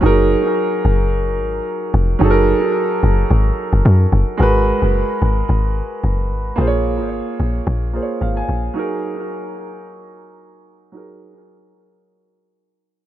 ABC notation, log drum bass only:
X:1
M:4/4
L:1/16
Q:"Swing 16ths" 1/4=110
K:F#
V:1 name="Log drum bass" clef=bass
F,,,3 z3 F,,,4 G,,,2 z2 E,,,2 | F,,,3 z3 F,,,2 G,,,2 z F,,, F,,2 F,,, z | G,,,3 F,,,2 z G,,,2 G,,,3 z F,,,2 G,,,2 | A,,,3 G,,,2 z A,,,2 A,,,3 z G,,,2 A,,,2 |
z16 | z16 |]